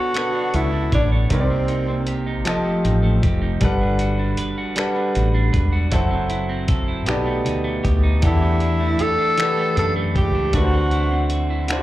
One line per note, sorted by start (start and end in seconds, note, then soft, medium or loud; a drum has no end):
0.00 0.14 B2 medium
0.00 0.14 B3 medium
0.00 0.15 B3 medium
0.00 0.16 D4 soft
0.00 0.33 D4 medium
0.00 0.57 F#4 medium
0.00 0.17 A4 medium
0.00 0.53 A4 soft
0.00 0.15 C#5 medium
0.00 1.33 C#5 medium
0.14 0.87 B2 soft
0.14 0.88 B3 soft
0.14 1.38 B3 medium
0.14 0.88 D4 soft
0.14 0.89 A4 soft
0.14 0.92 C#5 medium
0.14 finger snap medium
0.14 closed hi-hat medium
0.18 0.89 B4 soft
0.34 0.72 D4 soft
0.54 0.88 C#2 medium
0.54 0.93 E4 medium
0.54 1.11 A4 medium
0.54 closed hi-hat soft
0.73 1.38 D4 medium
0.92 1.27 A1 medium
0.92 1.11 D4 medium
0.92 1.39 C#5 medium
0.92 kick medium
0.92 closed hi-hat soft
1.12 1.31 A4 soft
1.29 2.46 C2 medium
1.29 2.03 C3 medium
1.29 2.54 C3 medium
1.29 2.03 C4 medium
1.29 2.04 D#4 soft
1.29 2.08 G4 medium
1.29 2.04 A#4 medium
1.29 kick medium
1.29 closed hi-hat medium
1.33 2.14 C4 medium
1.33 1.38 C#5 medium
1.40 2.08 D5 medium
1.50 1.87 A#3 medium
1.68 2.25 D#4 soft
1.68 closed hi-hat soft
1.88 2.54 A#3 medium
2.07 2.47 G4 medium
2.07 closed hi-hat medium
2.27 2.54 D#4 medium
2.45 2.81 F1 medium
2.45 3.18 F3 medium
2.45 3.69 F3 medium
2.45 3.19 C4 medium
2.45 3.19 G4 medium
2.45 3.22 G4 medium
2.45 3.20 A4 medium
2.45 finger snap medium
2.45 closed hi-hat medium
2.49 3.20 D#5 medium
2.65 3.02 A3 soft
2.84 3.19 A1 medium
2.84 3.41 D#4 medium
2.84 closed hi-hat soft
3.03 3.61 A3 medium
3.23 3.58 F1 medium
3.23 4.00 G4 medium
3.23 kick medium
3.23 closed hi-hat soft
3.42 3.69 D#4 medium
3.60 4.34 G1 medium
3.60 4.34 G3 medium
3.60 4.75 G3 medium
3.60 4.34 D4 medium
3.60 4.35 A4 medium
3.60 4.37 B4 medium
3.60 4.35 B4 medium
3.60 kick medium
3.60 closed hi-hat medium
3.65 4.36 F#5 medium
3.81 4.18 D4 soft
3.99 4.57 F#4 medium
3.99 closed hi-hat soft
4.19 4.95 D4 medium
4.37 4.76 B4 medium
4.37 muted fretless electric bass stroke soft
4.37 closed hi-hat medium
4.58 5.14 F#4 medium
4.76 5.49 G3 medium
4.76 5.91 G3 medium
4.76 5.49 D4 medium
4.76 5.50 A4 medium
4.76 5.52 B4 medium
4.76 5.51 B4 medium
4.76 finger snap medium
4.76 closed hi-hat medium
4.80 5.51 F#5 medium
4.96 5.33 D4 soft
5.15 5.50 A1 medium
5.15 5.71 F#4 medium
5.15 closed hi-hat soft
5.34 6.00 D4 medium
5.53 5.92 E1 medium
5.53 5.92 B4 medium
5.53 kick medium
5.53 closed hi-hat soft
5.73 6.00 F#4 soft
5.91 7.08 F#1 loud
5.91 6.65 F#3 medium
5.91 7.15 F#3 medium
5.91 6.65 E4 medium
5.91 6.68 A4 medium
5.91 6.66 A4 medium
5.91 6.66 C5 medium
5.91 6.67 F#5 medium
5.91 kick medium
5.91 closed hi-hat medium
6.11 6.48 C4 medium
6.30 6.87 E4 medium
6.30 closed hi-hat soft
6.49 7.15 C4 medium
6.68 7.06 A4 medium
6.68 kick loud
6.68 closed hi-hat medium
6.88 7.15 E4 medium
7.06 7.47 B1 medium
7.06 8.30 B2 medium
7.06 7.80 B2 medium
7.06 7.80 B3 medium
7.06 7.81 D#4 medium
7.06 7.83 G4 medium
7.06 7.81 G4 medium
7.06 7.81 A4 medium
7.06 finger snap medium
7.06 closed hi-hat medium
7.10 7.82 D5 medium
7.26 7.64 A3 medium
7.45 7.81 D2 medium
7.45 8.02 D#4 soft
7.45 closed hi-hat soft
7.64 8.41 A3 medium
7.84 8.19 D2 medium
7.84 8.23 G4 medium
7.84 kick medium
7.84 closed hi-hat soft
8.03 8.30 D#4 soft
8.22 8.96 E2 medium
8.22 8.95 E3 medium
8.22 9.37 E3 medium
8.22 8.96 D4 medium
8.22 9.04 E4 medium
8.22 8.98 G4 medium
8.22 8.97 G4 medium
8.22 8.96 F#5 medium
8.22 kick medium
8.22 closed hi-hat medium
8.26 8.97 A4 medium
8.42 8.80 A3 medium
8.60 9.18 D4 medium
8.60 closed hi-hat soft
8.81 9.57 A3 medium
8.99 9.37 G4 medium
8.99 9.78 A4 loud
8.99 muted fretless electric bass stroke soft
8.99 closed hi-hat medium
9.19 9.76 D4 medium
9.38 11.33 E3 medium
9.38 10.11 E3 medium
9.38 10.12 D4 soft
9.38 10.14 G4 soft
9.38 10.13 G4 medium
9.38 10.12 F#5 soft
9.38 finger snap loud
9.38 closed hi-hat medium
9.42 10.13 B4 medium
9.57 9.95 A3 medium
9.76 10.12 F#2 medium
9.76 10.34 D4 medium
9.76 9.94 A4 medium
9.76 closed hi-hat soft
9.96 10.73 A3 medium
10.15 10.50 C#2 medium
10.15 10.54 G4 medium
10.15 10.52 G4 medium
10.15 kick medium
10.15 closed hi-hat soft
10.35 10.76 D4 soft
10.53 11.83 D2 medium
10.53 11.26 D3 medium
10.53 11.69 D3 medium
10.53 11.27 D4 medium
10.53 11.27 E4 soft
10.53 11.29 F#4 medium
10.53 11.37 F#4 medium
10.53 11.28 F#4 medium
10.53 kick loud
10.53 closed hi-hat medium
10.57 10.62 B4 medium
10.64 11.31 C5 medium
10.73 11.10 C4 medium
10.91 11.50 E4 medium
10.91 closed hi-hat soft
11.11 11.83 C4 medium
11.30 11.69 F#4 medium
11.30 closed hi-hat medium
11.50 11.83 E4 medium
11.68 11.83 D3 medium
11.68 11.83 D4 medium
11.68 11.83 E4 medium
11.68 11.76 F4 soft
11.68 11.83 F#4 medium
11.68 finger snap loud
11.68 closed hi-hat medium
11.72 11.83 C5 medium
11.78 11.83 F#4 medium